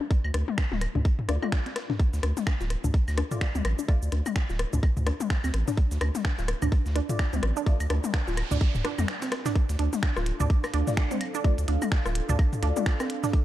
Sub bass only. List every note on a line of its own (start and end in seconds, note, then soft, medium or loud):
0.24 0.31 D2 loud
0.34 0.44 D2 medium
0.72 0.87 D1 medium
0.95 1.02 D2 medium
1.29 1.38 D2 medium
2.13 2.20 D2 loud
2.23 2.33 D2 medium
2.61 2.76 D1 medium
2.84 2.91 D2 medium
3.08 3.23 D2 medium
3.55 3.62 D2 medium
3.65 3.74 A1 loud
4.02 4.09 D2 loud
4.12 4.22 D2 medium
4.50 4.65 D1 loud
4.73 4.80 D2 medium
4.97 5.12 D2 loud
5.44 5.51 D2 medium
5.54 5.63 A1 loud
5.91 5.98 D2 loud
6.01 6.11 D2 medium
6.39 6.54 D1 medium
6.62 6.69 D2 medium
6.86 7.01 D2 loud
7.33 7.40 D2 medium
7.43 7.52 A1 loud
7.80 7.87 D2 loud
7.90 8.00 D2 medium
8.28 8.42 D1 loud
8.51 8.58 D2 medium
8.75 8.82 D1 loud
8.98 9.05 F2 loud
9.69 9.76 D2 loud
9.79 9.89 D2 medium
10.17 10.31 D1 loud
10.40 10.47 D2 medium
10.74 10.83 D2 medium
11.58 11.65 D2 loud
11.68 11.78 D2 medium
12.06 12.20 D1 loud
12.29 12.36 D2 medium
12.63 12.72 D2 medium